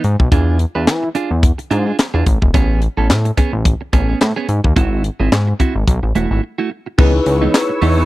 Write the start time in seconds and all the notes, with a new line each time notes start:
0.04 G#2, muted clean electric guitar stroke, closed hi-hat
0.19 B1, muted clean electric guitar stroke, kick
0.32 E2 D4 F4 G#4, kick, closed hi-hat
0.59 muted clean electric guitar stroke, closed hi-hat
0.75 E2 D4 F4 B4
0.87 E3, snare, clap, closed hi-hat
1.03 muted clean electric guitar stroke
1.15 D4 F4 G#4, closed hi-hat
1.31 E2, muted clean electric guitar stroke
1.43 muted clean electric guitar stroke, kick, closed hi-hat
1.58 muted clean electric guitar stroke, closed hi-hat
1.71 G#2 D4 F4 G#4, closed hi-hat
1.86 D4 F4 G#4
1.99 snare, clap, closed hi-hat
2.14 E2 D4 F4 G#4
2.26 A1, muted clean electric guitar stroke, kick, closed hi-hat
2.42 E1, muted clean electric guitar stroke, kick
2.54 A1 B3 C#4 G#4, kick, closed hi-hat
2.82 muted clean electric guitar stroke, closed hi-hat
2.97 A1 B3 C#4 A4
3.10 A2, snare, clap, closed hi-hat
3.25 muted clean electric guitar stroke, closed hi-hat
3.37 B3 C#4 G#4, kick, closed hi-hat
3.53 A1
3.65 muted clean electric guitar stroke, kick, closed hi-hat
3.81 muted clean electric guitar stroke
3.93 A1 B3 C#4 G#4, kick, closed hi-hat
4.08 B3 C#4 G#4
4.21 A2, snare, clap, closed hi-hat
4.36 B3 C#4 G#4
4.49 G#2, closed hi-hat
4.64 D#2, muted clean electric guitar stroke, kick
4.76 G#1 C4 E4 F#4, kick, closed hi-hat
5.04 closed hi-hat
5.20 G#1 C4 E4 G#4
5.32 G#2, snare, clap, closed hi-hat
5.47 muted clean electric guitar stroke
5.60 C4 E4 F#4, kick, closed hi-hat
5.75 G#1, muted clean electric guitar stroke
5.87 B1, muted clean electric guitar stroke, kick, closed hi-hat
6.03 A1, muted clean electric guitar stroke
6.15 E1 A3 E4 F#4, closed hi-hat
6.31 G#1 A3 E4 F#4
6.43 muted clean electric guitar stroke
6.58 A3 E4 F#4
6.71 muted clean electric guitar stroke
6.86 muted clean electric guitar stroke
6.98 C#2 E3 B3 D#4 E4 G#4 B4 C#5 C#6 E6, kick, crash
7.14 muted clean electric guitar stroke
7.26 C#2, muted clean electric guitar stroke, closed hi-hat
7.42 E3 B3 D#4
7.54 snare, clap, closed hi-hat
7.69 muted clean electric guitar stroke
7.82 E2 E3 B3 D#4, open hi-hat
7.97 E3 B3 D#4